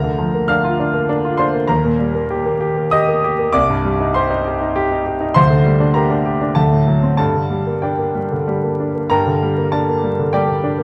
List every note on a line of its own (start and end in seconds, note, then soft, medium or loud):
0.00 1.65 D2 medium
0.00 0.28 D3 medium
0.00 0.45 A#4 medium
0.00 0.49 A#5 medium
0.18 0.43 F3 soft
0.34 0.59 A#3 soft
0.48 0.73 D4 soft
0.48 1.35 F5 medium
0.48 1.39 F6 medium
0.64 0.88 F4 medium
0.80 1.03 D4 soft
0.94 1.18 A#3 medium
1.09 1.33 D4 medium
1.25 1.48 F4 medium
1.37 1.63 D4 medium
1.37 1.67 C5 medium
1.37 1.68 C6 medium
1.54 1.69 A#3 medium
1.67 3.48 D#2 medium
1.67 2.87 A#4 medium
1.67 2.91 A#5 medium
1.85 2.08 A#2 medium
1.99 2.23 G3 soft
2.15 2.39 A#3 medium
2.30 2.54 G4 medium
2.46 2.70 A#3 medium
2.61 2.85 G4 medium
2.76 3.01 A#3 medium
2.91 3.17 G4 medium
2.91 3.49 D#5 medium
2.91 3.53 D#6 loud
3.08 3.32 A#3 medium
3.24 3.47 G4 medium
3.39 3.53 A#3 medium
3.53 5.32 C2 medium
3.53 4.10 D5 medium
3.53 4.14 D6 loud
3.70 3.93 G2 medium
3.85 4.08 G3 medium
4.00 4.24 D#4 medium
4.14 4.39 G4 medium
4.14 4.71 C5 medium
4.14 4.75 C6 medium
4.30 4.54 D#4 medium
4.45 4.69 G4 medium
4.61 4.85 D#4 medium
4.76 4.99 G4 medium
4.92 5.15 D#4 medium
5.06 5.30 G4 medium
5.21 5.35 D#4 medium
5.34 6.53 D2 medium
5.34 5.92 C5 medium
5.34 5.95 C6 loud
5.50 5.74 D3 medium
5.65 5.89 G3 medium
5.80 6.04 D4 medium
5.94 6.20 G4 medium
5.94 6.53 A#4 soft
5.94 6.56 A#5 medium
6.10 6.35 D4 medium
6.26 6.50 G4 medium
6.41 6.57 D4 medium
6.55 7.17 D2 medium
6.55 7.15 A4 medium
6.55 7.16 A5 medium
6.72 6.97 A2 soft
6.87 7.13 F#3 medium
7.03 7.19 C4 soft
7.17 9.06 G2 medium
7.17 7.79 A4 medium
7.17 7.83 A5 medium
7.35 7.61 D3 soft
7.50 7.77 G3 soft
7.67 7.93 A#3 soft
7.82 8.09 D4 soft
7.82 8.43 G4 soft
7.82 8.47 G5 medium
7.99 8.25 A#3 soft
8.15 8.41 G3 soft
8.32 8.57 D3 soft
8.48 8.73 G3 soft
8.64 8.89 A#3 soft
8.80 9.04 D4 soft
8.95 9.11 A#3 soft
9.10 10.83 G2 medium
9.10 9.68 A#4 medium
9.10 9.68 G5 medium
9.10 9.71 A#5 medium
9.26 9.50 D3 medium
9.43 9.66 G3 soft
9.58 9.81 A#3 soft
9.72 9.97 D4 soft
9.72 10.29 A4 medium
9.72 10.32 A5 medium
9.89 10.12 A#3 soft
10.03 10.27 G3 soft
10.19 10.42 D3 soft
10.33 10.57 G3 medium
10.33 10.83 G4 medium
10.33 10.83 D5 medium
10.33 10.83 G5 medium
10.48 10.72 A#3 soft
10.64 10.83 D4 medium
10.78 10.83 A#3 medium